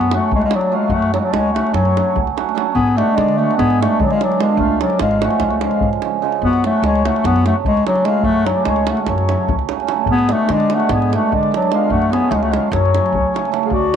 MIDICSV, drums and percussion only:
0, 0, Header, 1, 2, 480
1, 0, Start_track
1, 0, Key_signature, 3, "minor"
1, 0, Tempo, 406504
1, 1079, Time_signature, 9, 3, 24, 8
1, 16484, End_track
2, 0, Start_track
2, 0, Title_t, "Davul"
2, 12, Note_on_c, 9, 37, 28
2, 130, Note_off_c, 9, 37, 0
2, 135, Note_on_c, 9, 37, 71
2, 253, Note_off_c, 9, 37, 0
2, 374, Note_on_c, 9, 43, 93
2, 490, Note_on_c, 9, 37, 25
2, 492, Note_off_c, 9, 43, 0
2, 599, Note_off_c, 9, 37, 0
2, 599, Note_on_c, 9, 37, 77
2, 718, Note_off_c, 9, 37, 0
2, 721, Note_on_c, 9, 37, 25
2, 840, Note_off_c, 9, 37, 0
2, 1052, Note_on_c, 9, 43, 85
2, 1170, Note_off_c, 9, 43, 0
2, 1209, Note_on_c, 9, 37, 28
2, 1327, Note_off_c, 9, 37, 0
2, 1344, Note_on_c, 9, 37, 59
2, 1462, Note_off_c, 9, 37, 0
2, 1578, Note_on_c, 9, 37, 70
2, 1696, Note_off_c, 9, 37, 0
2, 1842, Note_on_c, 9, 37, 64
2, 1960, Note_off_c, 9, 37, 0
2, 1968, Note_on_c, 9, 37, 24
2, 2059, Note_off_c, 9, 37, 0
2, 2059, Note_on_c, 9, 37, 59
2, 2059, Note_on_c, 9, 43, 54
2, 2177, Note_off_c, 9, 37, 0
2, 2177, Note_off_c, 9, 43, 0
2, 2188, Note_on_c, 9, 37, 23
2, 2306, Note_off_c, 9, 37, 0
2, 2327, Note_on_c, 9, 37, 57
2, 2445, Note_off_c, 9, 37, 0
2, 2552, Note_on_c, 9, 43, 86
2, 2670, Note_off_c, 9, 43, 0
2, 2684, Note_on_c, 9, 37, 23
2, 2802, Note_off_c, 9, 37, 0
2, 2806, Note_on_c, 9, 37, 58
2, 2924, Note_off_c, 9, 37, 0
2, 2939, Note_on_c, 9, 37, 23
2, 3042, Note_off_c, 9, 37, 0
2, 3042, Note_on_c, 9, 37, 55
2, 3160, Note_off_c, 9, 37, 0
2, 3256, Note_on_c, 9, 43, 71
2, 3374, Note_off_c, 9, 43, 0
2, 3389, Note_on_c, 9, 37, 21
2, 3507, Note_off_c, 9, 37, 0
2, 3522, Note_on_c, 9, 37, 51
2, 3640, Note_off_c, 9, 37, 0
2, 3753, Note_on_c, 9, 37, 63
2, 3871, Note_off_c, 9, 37, 0
2, 3878, Note_on_c, 9, 37, 22
2, 3996, Note_off_c, 9, 37, 0
2, 4141, Note_on_c, 9, 37, 26
2, 4242, Note_off_c, 9, 37, 0
2, 4242, Note_on_c, 9, 37, 58
2, 4242, Note_on_c, 9, 43, 54
2, 4360, Note_off_c, 9, 37, 0
2, 4360, Note_off_c, 9, 43, 0
2, 4373, Note_on_c, 9, 37, 27
2, 4491, Note_off_c, 9, 37, 0
2, 4517, Note_on_c, 9, 37, 70
2, 4635, Note_off_c, 9, 37, 0
2, 4735, Note_on_c, 9, 43, 92
2, 4848, Note_on_c, 9, 37, 27
2, 4853, Note_off_c, 9, 43, 0
2, 4966, Note_off_c, 9, 37, 0
2, 4971, Note_on_c, 9, 37, 63
2, 5089, Note_off_c, 9, 37, 0
2, 5098, Note_on_c, 9, 37, 29
2, 5201, Note_off_c, 9, 37, 0
2, 5201, Note_on_c, 9, 37, 75
2, 5319, Note_off_c, 9, 37, 0
2, 5427, Note_on_c, 9, 43, 92
2, 5545, Note_off_c, 9, 43, 0
2, 5677, Note_on_c, 9, 37, 64
2, 5785, Note_off_c, 9, 37, 0
2, 5785, Note_on_c, 9, 37, 25
2, 5897, Note_off_c, 9, 37, 0
2, 5897, Note_on_c, 9, 37, 78
2, 6015, Note_off_c, 9, 37, 0
2, 6033, Note_on_c, 9, 37, 28
2, 6151, Note_off_c, 9, 37, 0
2, 6160, Note_on_c, 9, 37, 73
2, 6264, Note_off_c, 9, 37, 0
2, 6264, Note_on_c, 9, 37, 30
2, 6373, Note_off_c, 9, 37, 0
2, 6373, Note_on_c, 9, 37, 64
2, 6373, Note_on_c, 9, 43, 61
2, 6491, Note_off_c, 9, 37, 0
2, 6491, Note_off_c, 9, 43, 0
2, 6500, Note_on_c, 9, 37, 25
2, 6618, Note_off_c, 9, 37, 0
2, 6626, Note_on_c, 9, 37, 64
2, 6743, Note_off_c, 9, 37, 0
2, 6743, Note_on_c, 9, 37, 25
2, 6857, Note_on_c, 9, 43, 88
2, 6861, Note_off_c, 9, 37, 0
2, 6975, Note_off_c, 9, 43, 0
2, 7001, Note_on_c, 9, 37, 24
2, 7108, Note_off_c, 9, 37, 0
2, 7108, Note_on_c, 9, 37, 54
2, 7226, Note_off_c, 9, 37, 0
2, 7467, Note_on_c, 9, 37, 26
2, 7585, Note_off_c, 9, 37, 0
2, 7587, Note_on_c, 9, 43, 74
2, 7705, Note_off_c, 9, 43, 0
2, 7711, Note_on_c, 9, 37, 29
2, 7829, Note_off_c, 9, 37, 0
2, 7841, Note_on_c, 9, 37, 60
2, 7959, Note_off_c, 9, 37, 0
2, 8072, Note_on_c, 9, 37, 62
2, 8190, Note_off_c, 9, 37, 0
2, 8212, Note_on_c, 9, 37, 28
2, 8330, Note_off_c, 9, 37, 0
2, 8330, Note_on_c, 9, 37, 65
2, 8448, Note_off_c, 9, 37, 0
2, 8457, Note_on_c, 9, 37, 25
2, 8561, Note_off_c, 9, 37, 0
2, 8561, Note_on_c, 9, 37, 63
2, 8561, Note_on_c, 9, 43, 54
2, 8679, Note_off_c, 9, 37, 0
2, 8679, Note_off_c, 9, 43, 0
2, 8690, Note_on_c, 9, 37, 27
2, 8805, Note_off_c, 9, 37, 0
2, 8805, Note_on_c, 9, 37, 58
2, 8923, Note_off_c, 9, 37, 0
2, 9029, Note_on_c, 9, 43, 89
2, 9147, Note_off_c, 9, 43, 0
2, 9177, Note_on_c, 9, 37, 25
2, 9288, Note_off_c, 9, 37, 0
2, 9288, Note_on_c, 9, 37, 60
2, 9393, Note_off_c, 9, 37, 0
2, 9393, Note_on_c, 9, 37, 26
2, 9507, Note_off_c, 9, 37, 0
2, 9507, Note_on_c, 9, 37, 58
2, 9626, Note_off_c, 9, 37, 0
2, 9720, Note_on_c, 9, 43, 82
2, 9838, Note_off_c, 9, 43, 0
2, 9996, Note_on_c, 9, 37, 63
2, 10114, Note_off_c, 9, 37, 0
2, 10219, Note_on_c, 9, 37, 64
2, 10337, Note_off_c, 9, 37, 0
2, 10345, Note_on_c, 9, 37, 29
2, 10463, Note_off_c, 9, 37, 0
2, 10471, Note_on_c, 9, 37, 68
2, 10589, Note_off_c, 9, 37, 0
2, 10592, Note_on_c, 9, 37, 28
2, 10704, Note_off_c, 9, 37, 0
2, 10704, Note_on_c, 9, 37, 61
2, 10704, Note_on_c, 9, 43, 58
2, 10822, Note_off_c, 9, 37, 0
2, 10822, Note_off_c, 9, 43, 0
2, 10838, Note_on_c, 9, 37, 27
2, 10956, Note_off_c, 9, 37, 0
2, 10968, Note_on_c, 9, 37, 61
2, 11086, Note_off_c, 9, 37, 0
2, 11200, Note_on_c, 9, 43, 100
2, 11318, Note_off_c, 9, 43, 0
2, 11322, Note_on_c, 9, 37, 26
2, 11439, Note_off_c, 9, 37, 0
2, 11439, Note_on_c, 9, 37, 66
2, 11557, Note_off_c, 9, 37, 0
2, 11571, Note_on_c, 9, 37, 30
2, 11672, Note_off_c, 9, 37, 0
2, 11672, Note_on_c, 9, 37, 63
2, 11791, Note_off_c, 9, 37, 0
2, 11879, Note_on_c, 9, 43, 88
2, 11997, Note_off_c, 9, 43, 0
2, 12028, Note_on_c, 9, 37, 26
2, 12146, Note_off_c, 9, 37, 0
2, 12149, Note_on_c, 9, 37, 63
2, 12267, Note_off_c, 9, 37, 0
2, 12384, Note_on_c, 9, 37, 69
2, 12502, Note_off_c, 9, 37, 0
2, 12516, Note_on_c, 9, 37, 29
2, 12632, Note_off_c, 9, 37, 0
2, 12632, Note_on_c, 9, 37, 67
2, 12750, Note_off_c, 9, 37, 0
2, 12750, Note_on_c, 9, 37, 26
2, 12863, Note_off_c, 9, 37, 0
2, 12863, Note_on_c, 9, 37, 65
2, 12863, Note_on_c, 9, 43, 58
2, 12981, Note_off_c, 9, 37, 0
2, 12981, Note_off_c, 9, 43, 0
2, 13013, Note_on_c, 9, 37, 27
2, 13132, Note_off_c, 9, 37, 0
2, 13140, Note_on_c, 9, 37, 54
2, 13258, Note_off_c, 9, 37, 0
2, 13376, Note_on_c, 9, 43, 77
2, 13494, Note_off_c, 9, 43, 0
2, 13495, Note_on_c, 9, 37, 25
2, 13613, Note_off_c, 9, 37, 0
2, 13628, Note_on_c, 9, 37, 62
2, 13724, Note_off_c, 9, 37, 0
2, 13724, Note_on_c, 9, 37, 25
2, 13834, Note_off_c, 9, 37, 0
2, 13834, Note_on_c, 9, 37, 58
2, 13952, Note_off_c, 9, 37, 0
2, 14072, Note_on_c, 9, 43, 79
2, 14190, Note_off_c, 9, 43, 0
2, 14191, Note_on_c, 9, 37, 24
2, 14309, Note_off_c, 9, 37, 0
2, 14325, Note_on_c, 9, 37, 62
2, 14443, Note_off_c, 9, 37, 0
2, 14545, Note_on_c, 9, 37, 59
2, 14663, Note_off_c, 9, 37, 0
2, 14673, Note_on_c, 9, 37, 27
2, 14791, Note_off_c, 9, 37, 0
2, 14801, Note_on_c, 9, 37, 69
2, 14919, Note_off_c, 9, 37, 0
2, 15034, Note_on_c, 9, 37, 58
2, 15034, Note_on_c, 9, 43, 57
2, 15152, Note_off_c, 9, 37, 0
2, 15152, Note_off_c, 9, 43, 0
2, 15178, Note_on_c, 9, 37, 22
2, 15285, Note_off_c, 9, 37, 0
2, 15285, Note_on_c, 9, 37, 58
2, 15404, Note_off_c, 9, 37, 0
2, 15419, Note_on_c, 9, 37, 21
2, 15525, Note_on_c, 9, 43, 84
2, 15537, Note_off_c, 9, 37, 0
2, 15643, Note_off_c, 9, 43, 0
2, 15776, Note_on_c, 9, 37, 59
2, 15886, Note_off_c, 9, 37, 0
2, 15886, Note_on_c, 9, 37, 25
2, 15985, Note_off_c, 9, 37, 0
2, 15985, Note_on_c, 9, 37, 49
2, 16096, Note_off_c, 9, 37, 0
2, 16096, Note_on_c, 9, 37, 22
2, 16189, Note_on_c, 9, 43, 82
2, 16214, Note_off_c, 9, 37, 0
2, 16307, Note_off_c, 9, 43, 0
2, 16484, End_track
0, 0, End_of_file